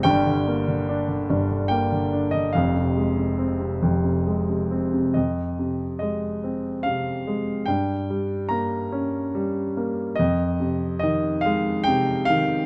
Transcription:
X:1
M:3/4
L:1/16
Q:1/4=72
K:Gphr
V:1 name="Grand piano"
g8 g3 e | f8- f2 z2 | [K:Fm] e4 e4 f4 | g4 b6 z2 |
e4 e2 f2 g2 f2 |]
V:2 name="Grand piano" clef=bass
[G,,,G,,] D, B, D, D D, [G,,,G,,] D, B, D, D D, | [F,,,F,,] C, A, C, C C, [F,,,F,,] C, A, C, C C, | [K:Fm] F,,2 C,2 A,2 C2 C,2 A,2 | G,,2 G,2 B,2 D2 G,2 B,2 |
F,,2 C,2 E,2 A,2 C,2 E,2 |]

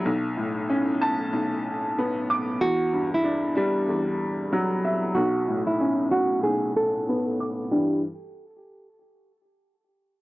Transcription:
X:1
M:4/4
L:1/16
Q:"Swing 16ths" 1/4=94
K:Edor
V:1 name="Nylon-string guitar"
z16 | F3 E3 D3 z6 z | F3 E3 F2 ^G2 A3 z3 | G2 z12 z2 |]
V:2 name="Upright piano" clef=bass
B,,,2 A,,2 C2 a2 B,,,4 B,2 d'2 | E,,2 G,,2 D2 G,2 E,,4 F,2 e2 | B,,,2 A,,2 C2 f2 B,,,4 B,2 d'2 | [G,,E,G,D]2 z12 z2 |]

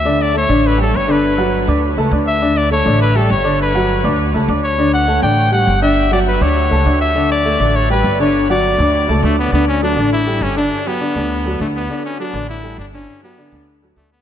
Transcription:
X:1
M:4/4
L:1/8
Q:1/4=202
K:D
V:1 name="Trumpet"
e d c2 B A c B- | B4 z3 e- | e d c2 B A c2 | B4 z3 c- |
c f2 g2 f2 e- | e d B c4 e- | e d3 c B2 c- | c d4- d A, B, |
B, C D2 E2 C D- | D B,4- B, A, B,- | B, C D2 E2 D C- | C B,3 z2 A, B, |]
V:2 name="Upright piano"
[D,Dd]2 [A,Aa] [D,Dd]2 [G,Gg]2 [D,Dd]- | [D,Dd] [F,Ff]2 [Ddd']2 [A,Aa] [Ddd']2 | [D,Dd]2 [A,Aa] [D,Dd]2 [G,Gg]2 [D,Dd]- | [D,Dd] [F,Ff]2 [Ddd']2 [A,Aa] [Ddd']2 |
[D,Dd]2 [A,Aa] [D,Dd]2 [G,Gg]2 [D,Dd]- | [D,Dd] [F,Ff]2 [Ddd']2 [A,Aa] [Ddd']2 | [D,Dd]2 [A,Aa] [D,Dd]2 [G,Gg]2 [D,Dd]- | [D,Dd] [F,Ff]2 [Ddd']2 [A,Aa] [Ddd']2 |
[D,Dd]2 [F,FA] [D,Dd]2 [G,GA]2 [D,Dd]- | [D,Dd] [F,FG] [D,Dd] [D,Dd]2 [F,FA] [D,Dd]2 | [D,Dd]2 [F,FA] [D,Dd]2 [G,GA]2 [D,Dd]- | [D,Dd] [F,FG] [D,Dd] [D,Dd]2 [F,FA] [D,Dd]2 |]
V:3 name="Upright bass" clef=bass
D,,3 A,,,3 G,,,2- | G,,,3 D,,2 C,, D,,2- | D,,3 A,,,3 G,,,2- | G,,,3 D,,2 C,, D,,2- |
D,,3 A,,,3 G,,,2- | G,,,3 D,,2 C,, D,,2- | D,,3 A,,,3 G,,,2- | G,,,3 D,,2 C,, D,,2 |
D,,3 A,,,3 G,,,2 | z3 D,,3 D,,2 | z3 A,,,3 G,,,2 | z3 D,,3 D,,2 |]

